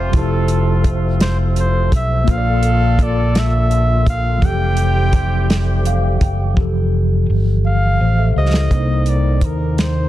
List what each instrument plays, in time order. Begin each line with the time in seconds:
Already playing: fingered electric bass F1, tonewheel organ F3 A3 C4 G4, horn section A3 C4 F4, tine electric piano G4 A4, flugelhorn C5
0.11 fingered electric bass F1, tine electric piano F3 E4, kick, closed hi-hat
0.15 tine electric piano G4 C5, tonewheel organ A4, flugelhorn A4
0.48 closed hi-hat
0.84 kick, closed hi-hat
1.21 flugelhorn C5, snare, closed hi-hat
1.56 flugelhorn C5, closed hi-hat
1.92 fingered electric bass B1, kick, closed hi-hat
1.96 flugelhorn E5
2.24 tine electric piano A#3 F4, horn section D4 F4 A4, tonewheel organ F4, kick, closed hi-hat
2.28 fingered electric bass A#1, tonewheel organ D3 A#3 A4, tine electric piano A4 C5, flugelhorn F5
2.38 tine electric piano D5
2.63 closed hi-hat
2.99 kick, closed hi-hat
3.03 flugelhorn D5
3.35 flugelhorn E5, snare, closed hi-hat
3.71 closed hi-hat
4.07 flugelhorn F5, kick, closed hi-hat
4.38 tine electric piano E3 F3, horn section C4 E4 G4, kick, closed hi-hat
4.42 fingered electric bass F1, tonewheel organ G3 A3 C4 G4, tine electric piano G4 A4, flugelhorn G5
4.77 closed hi-hat
5.13 kick, closed hi-hat
5.50 snare, closed hi-hat
5.85 tine electric piano F5, closed hi-hat
6.21 fingered electric bass F#1, tine electric piano G5, kick, closed hi-hat
6.54 fingered electric bass F1, tine electric piano E3 F3, kick
6.59 tine electric piano G4 A4
7.30 fingered electric bass G1
7.66 flugelhorn F5
8.01 fingered electric bass A1, tine electric piano C5 F5
8.19 tine electric piano A4 E5
8.36 fingered electric bass C#2, tine electric piano G4 C5, flugelhorn D#5
8.54 tine electric piano E4 A4, snare
8.69 fingered electric bass C2, tine electric piano C3 A#3, tonewheel organ D#3 A#3 C4 D#4, kick, closed hi-hat
8.73 tine electric piano D4 C5
8.80 tine electric piano D#4
9.06 flugelhorn D5, closed hi-hat
9.41 fingered electric bass D#2, flugelhorn A#4, kick, closed hi-hat
9.78 flugelhorn C5, snare, closed hi-hat